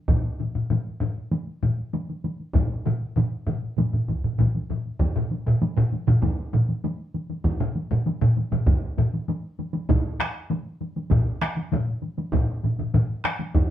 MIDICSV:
0, 0, Header, 1, 2, 480
1, 0, Start_track
1, 0, Tempo, 614125
1, 65, Time_signature, 4, 2, 24, 8
1, 5345, Tempo, 609756
1, 10749, End_track
2, 0, Start_track
2, 0, Title_t, "Taiko and cinematic ensemble drums"
2, 64, Note_on_c, 9, 41, 97
2, 69, Note_on_c, 9, 45, 85
2, 74, Note_on_c, 9, 48, 58
2, 142, Note_off_c, 9, 41, 0
2, 147, Note_off_c, 9, 45, 0
2, 152, Note_off_c, 9, 48, 0
2, 196, Note_on_c, 9, 48, 21
2, 274, Note_off_c, 9, 48, 0
2, 311, Note_on_c, 9, 45, 63
2, 315, Note_on_c, 9, 48, 49
2, 389, Note_off_c, 9, 45, 0
2, 393, Note_off_c, 9, 48, 0
2, 431, Note_on_c, 9, 45, 65
2, 438, Note_on_c, 9, 48, 18
2, 509, Note_off_c, 9, 45, 0
2, 516, Note_off_c, 9, 48, 0
2, 548, Note_on_c, 9, 45, 90
2, 555, Note_on_c, 9, 48, 63
2, 627, Note_off_c, 9, 45, 0
2, 633, Note_off_c, 9, 48, 0
2, 677, Note_on_c, 9, 48, 19
2, 755, Note_off_c, 9, 48, 0
2, 790, Note_on_c, 9, 48, 47
2, 791, Note_on_c, 9, 45, 95
2, 868, Note_off_c, 9, 48, 0
2, 870, Note_off_c, 9, 45, 0
2, 910, Note_on_c, 9, 48, 19
2, 989, Note_off_c, 9, 48, 0
2, 1027, Note_on_c, 9, 48, 68
2, 1106, Note_off_c, 9, 48, 0
2, 1152, Note_on_c, 9, 48, 21
2, 1230, Note_off_c, 9, 48, 0
2, 1271, Note_on_c, 9, 45, 89
2, 1272, Note_on_c, 9, 48, 53
2, 1349, Note_off_c, 9, 45, 0
2, 1350, Note_off_c, 9, 48, 0
2, 1392, Note_on_c, 9, 48, 21
2, 1470, Note_off_c, 9, 48, 0
2, 1510, Note_on_c, 9, 48, 62
2, 1589, Note_off_c, 9, 48, 0
2, 1635, Note_on_c, 9, 48, 44
2, 1713, Note_off_c, 9, 48, 0
2, 1753, Note_on_c, 9, 48, 52
2, 1831, Note_off_c, 9, 48, 0
2, 1872, Note_on_c, 9, 48, 20
2, 1950, Note_off_c, 9, 48, 0
2, 1984, Note_on_c, 9, 41, 98
2, 1990, Note_on_c, 9, 47, 89
2, 1995, Note_on_c, 9, 48, 60
2, 1996, Note_on_c, 9, 45, 92
2, 2063, Note_off_c, 9, 41, 0
2, 2068, Note_off_c, 9, 47, 0
2, 2073, Note_off_c, 9, 48, 0
2, 2074, Note_off_c, 9, 45, 0
2, 2116, Note_on_c, 9, 48, 22
2, 2194, Note_off_c, 9, 48, 0
2, 2231, Note_on_c, 9, 47, 87
2, 2236, Note_on_c, 9, 45, 84
2, 2238, Note_on_c, 9, 48, 53
2, 2310, Note_off_c, 9, 47, 0
2, 2314, Note_off_c, 9, 45, 0
2, 2316, Note_off_c, 9, 48, 0
2, 2356, Note_on_c, 9, 48, 19
2, 2434, Note_off_c, 9, 48, 0
2, 2470, Note_on_c, 9, 45, 88
2, 2471, Note_on_c, 9, 47, 86
2, 2476, Note_on_c, 9, 48, 69
2, 2548, Note_off_c, 9, 45, 0
2, 2549, Note_off_c, 9, 47, 0
2, 2554, Note_off_c, 9, 48, 0
2, 2602, Note_on_c, 9, 48, 20
2, 2680, Note_off_c, 9, 48, 0
2, 2711, Note_on_c, 9, 47, 95
2, 2712, Note_on_c, 9, 45, 91
2, 2723, Note_on_c, 9, 48, 49
2, 2789, Note_off_c, 9, 47, 0
2, 2790, Note_off_c, 9, 45, 0
2, 2801, Note_off_c, 9, 48, 0
2, 2844, Note_on_c, 9, 48, 21
2, 2922, Note_off_c, 9, 48, 0
2, 2951, Note_on_c, 9, 47, 65
2, 2955, Note_on_c, 9, 45, 63
2, 2958, Note_on_c, 9, 48, 76
2, 3029, Note_off_c, 9, 47, 0
2, 3034, Note_off_c, 9, 45, 0
2, 3036, Note_off_c, 9, 48, 0
2, 3072, Note_on_c, 9, 47, 63
2, 3074, Note_on_c, 9, 45, 61
2, 3075, Note_on_c, 9, 48, 22
2, 3151, Note_off_c, 9, 47, 0
2, 3152, Note_off_c, 9, 45, 0
2, 3153, Note_off_c, 9, 48, 0
2, 3189, Note_on_c, 9, 41, 72
2, 3198, Note_on_c, 9, 48, 54
2, 3268, Note_off_c, 9, 41, 0
2, 3276, Note_off_c, 9, 48, 0
2, 3315, Note_on_c, 9, 47, 64
2, 3315, Note_on_c, 9, 48, 23
2, 3316, Note_on_c, 9, 45, 61
2, 3393, Note_off_c, 9, 47, 0
2, 3393, Note_off_c, 9, 48, 0
2, 3394, Note_off_c, 9, 45, 0
2, 3431, Note_on_c, 9, 41, 63
2, 3431, Note_on_c, 9, 47, 84
2, 3436, Note_on_c, 9, 48, 61
2, 3437, Note_on_c, 9, 45, 90
2, 3509, Note_off_c, 9, 41, 0
2, 3509, Note_off_c, 9, 47, 0
2, 3514, Note_off_c, 9, 48, 0
2, 3515, Note_off_c, 9, 45, 0
2, 3555, Note_on_c, 9, 48, 47
2, 3633, Note_off_c, 9, 48, 0
2, 3671, Note_on_c, 9, 47, 59
2, 3674, Note_on_c, 9, 45, 68
2, 3675, Note_on_c, 9, 48, 47
2, 3749, Note_off_c, 9, 47, 0
2, 3752, Note_off_c, 9, 45, 0
2, 3753, Note_off_c, 9, 48, 0
2, 3796, Note_on_c, 9, 48, 21
2, 3874, Note_off_c, 9, 48, 0
2, 3903, Note_on_c, 9, 41, 94
2, 3915, Note_on_c, 9, 48, 60
2, 3982, Note_off_c, 9, 41, 0
2, 3994, Note_off_c, 9, 48, 0
2, 4030, Note_on_c, 9, 47, 97
2, 4033, Note_on_c, 9, 45, 90
2, 4108, Note_off_c, 9, 47, 0
2, 4111, Note_off_c, 9, 45, 0
2, 4149, Note_on_c, 9, 48, 54
2, 4227, Note_off_c, 9, 48, 0
2, 4271, Note_on_c, 9, 47, 95
2, 4275, Note_on_c, 9, 45, 93
2, 4349, Note_off_c, 9, 47, 0
2, 4353, Note_off_c, 9, 45, 0
2, 4389, Note_on_c, 9, 48, 73
2, 4467, Note_off_c, 9, 48, 0
2, 4511, Note_on_c, 9, 47, 99
2, 4514, Note_on_c, 9, 45, 105
2, 4589, Note_off_c, 9, 47, 0
2, 4592, Note_off_c, 9, 45, 0
2, 4630, Note_on_c, 9, 48, 54
2, 4708, Note_off_c, 9, 48, 0
2, 4748, Note_on_c, 9, 48, 57
2, 4751, Note_on_c, 9, 45, 104
2, 4752, Note_on_c, 9, 47, 93
2, 4826, Note_off_c, 9, 48, 0
2, 4829, Note_off_c, 9, 45, 0
2, 4830, Note_off_c, 9, 47, 0
2, 4865, Note_on_c, 9, 41, 98
2, 4866, Note_on_c, 9, 48, 76
2, 4944, Note_off_c, 9, 41, 0
2, 4944, Note_off_c, 9, 48, 0
2, 5104, Note_on_c, 9, 48, 53
2, 5108, Note_on_c, 9, 47, 88
2, 5110, Note_on_c, 9, 45, 93
2, 5183, Note_off_c, 9, 48, 0
2, 5186, Note_off_c, 9, 47, 0
2, 5188, Note_off_c, 9, 45, 0
2, 5227, Note_on_c, 9, 48, 54
2, 5305, Note_off_c, 9, 48, 0
2, 5345, Note_on_c, 9, 48, 67
2, 5424, Note_off_c, 9, 48, 0
2, 5586, Note_on_c, 9, 48, 50
2, 5665, Note_off_c, 9, 48, 0
2, 5705, Note_on_c, 9, 48, 50
2, 5784, Note_off_c, 9, 48, 0
2, 5819, Note_on_c, 9, 41, 100
2, 5824, Note_on_c, 9, 48, 61
2, 5898, Note_off_c, 9, 41, 0
2, 5902, Note_off_c, 9, 48, 0
2, 5947, Note_on_c, 9, 47, 96
2, 5948, Note_on_c, 9, 45, 91
2, 6026, Note_off_c, 9, 47, 0
2, 6027, Note_off_c, 9, 45, 0
2, 6067, Note_on_c, 9, 48, 49
2, 6145, Note_off_c, 9, 48, 0
2, 6188, Note_on_c, 9, 45, 96
2, 6191, Note_on_c, 9, 47, 98
2, 6266, Note_off_c, 9, 45, 0
2, 6270, Note_off_c, 9, 47, 0
2, 6308, Note_on_c, 9, 48, 66
2, 6386, Note_off_c, 9, 48, 0
2, 6428, Note_on_c, 9, 45, 106
2, 6432, Note_on_c, 9, 47, 95
2, 6507, Note_off_c, 9, 45, 0
2, 6511, Note_off_c, 9, 47, 0
2, 6549, Note_on_c, 9, 48, 58
2, 6627, Note_off_c, 9, 48, 0
2, 6669, Note_on_c, 9, 48, 56
2, 6671, Note_on_c, 9, 45, 93
2, 6672, Note_on_c, 9, 47, 89
2, 6748, Note_off_c, 9, 48, 0
2, 6749, Note_off_c, 9, 45, 0
2, 6751, Note_off_c, 9, 47, 0
2, 6785, Note_on_c, 9, 41, 99
2, 6791, Note_on_c, 9, 48, 73
2, 6864, Note_off_c, 9, 41, 0
2, 6870, Note_off_c, 9, 48, 0
2, 7030, Note_on_c, 9, 48, 53
2, 7034, Note_on_c, 9, 45, 96
2, 7034, Note_on_c, 9, 47, 91
2, 7108, Note_off_c, 9, 48, 0
2, 7112, Note_off_c, 9, 45, 0
2, 7113, Note_off_c, 9, 47, 0
2, 7152, Note_on_c, 9, 48, 58
2, 7231, Note_off_c, 9, 48, 0
2, 7269, Note_on_c, 9, 48, 70
2, 7347, Note_off_c, 9, 48, 0
2, 7509, Note_on_c, 9, 48, 57
2, 7588, Note_off_c, 9, 48, 0
2, 7627, Note_on_c, 9, 48, 65
2, 7705, Note_off_c, 9, 48, 0
2, 7747, Note_on_c, 9, 41, 111
2, 7747, Note_on_c, 9, 48, 72
2, 7751, Note_on_c, 9, 45, 95
2, 7753, Note_on_c, 9, 47, 96
2, 7825, Note_off_c, 9, 41, 0
2, 7825, Note_off_c, 9, 48, 0
2, 7830, Note_off_c, 9, 45, 0
2, 7831, Note_off_c, 9, 47, 0
2, 7985, Note_on_c, 9, 48, 54
2, 7994, Note_on_c, 9, 37, 75
2, 7995, Note_off_c, 9, 37, 0
2, 7995, Note_on_c, 9, 37, 77
2, 8064, Note_off_c, 9, 48, 0
2, 8074, Note_off_c, 9, 37, 0
2, 8227, Note_on_c, 9, 48, 79
2, 8306, Note_off_c, 9, 48, 0
2, 8469, Note_on_c, 9, 48, 51
2, 8547, Note_off_c, 9, 48, 0
2, 8591, Note_on_c, 9, 48, 54
2, 8669, Note_off_c, 9, 48, 0
2, 8705, Note_on_c, 9, 48, 79
2, 8709, Note_on_c, 9, 41, 104
2, 8710, Note_on_c, 9, 47, 98
2, 8714, Note_on_c, 9, 45, 95
2, 8784, Note_off_c, 9, 48, 0
2, 8788, Note_off_c, 9, 41, 0
2, 8789, Note_off_c, 9, 47, 0
2, 8792, Note_off_c, 9, 45, 0
2, 8945, Note_on_c, 9, 48, 59
2, 8950, Note_on_c, 9, 37, 69
2, 8954, Note_off_c, 9, 37, 0
2, 8954, Note_on_c, 9, 37, 72
2, 9024, Note_off_c, 9, 48, 0
2, 9033, Note_off_c, 9, 37, 0
2, 9064, Note_on_c, 9, 48, 55
2, 9143, Note_off_c, 9, 48, 0
2, 9186, Note_on_c, 9, 48, 70
2, 9191, Note_on_c, 9, 45, 104
2, 9191, Note_on_c, 9, 47, 96
2, 9265, Note_off_c, 9, 48, 0
2, 9269, Note_off_c, 9, 47, 0
2, 9270, Note_off_c, 9, 45, 0
2, 9425, Note_on_c, 9, 48, 50
2, 9504, Note_off_c, 9, 48, 0
2, 9546, Note_on_c, 9, 48, 55
2, 9624, Note_off_c, 9, 48, 0
2, 9664, Note_on_c, 9, 41, 105
2, 9666, Note_on_c, 9, 48, 61
2, 9668, Note_on_c, 9, 45, 99
2, 9670, Note_on_c, 9, 47, 94
2, 9743, Note_off_c, 9, 41, 0
2, 9745, Note_off_c, 9, 48, 0
2, 9746, Note_off_c, 9, 45, 0
2, 9749, Note_off_c, 9, 47, 0
2, 9907, Note_on_c, 9, 48, 52
2, 9912, Note_on_c, 9, 47, 69
2, 9913, Note_on_c, 9, 45, 65
2, 9986, Note_off_c, 9, 48, 0
2, 9991, Note_off_c, 9, 47, 0
2, 9992, Note_off_c, 9, 45, 0
2, 10026, Note_on_c, 9, 48, 47
2, 10030, Note_on_c, 9, 47, 67
2, 10033, Note_on_c, 9, 45, 68
2, 10105, Note_off_c, 9, 48, 0
2, 10109, Note_off_c, 9, 47, 0
2, 10111, Note_off_c, 9, 45, 0
2, 10146, Note_on_c, 9, 48, 70
2, 10151, Note_on_c, 9, 45, 107
2, 10152, Note_on_c, 9, 47, 95
2, 10225, Note_off_c, 9, 48, 0
2, 10230, Note_off_c, 9, 45, 0
2, 10230, Note_off_c, 9, 47, 0
2, 10386, Note_on_c, 9, 48, 56
2, 10392, Note_on_c, 9, 37, 75
2, 10393, Note_off_c, 9, 37, 0
2, 10393, Note_on_c, 9, 37, 75
2, 10465, Note_off_c, 9, 48, 0
2, 10472, Note_off_c, 9, 37, 0
2, 10503, Note_on_c, 9, 48, 55
2, 10582, Note_off_c, 9, 48, 0
2, 10625, Note_on_c, 9, 41, 104
2, 10626, Note_on_c, 9, 48, 72
2, 10704, Note_off_c, 9, 41, 0
2, 10705, Note_off_c, 9, 48, 0
2, 10749, End_track
0, 0, End_of_file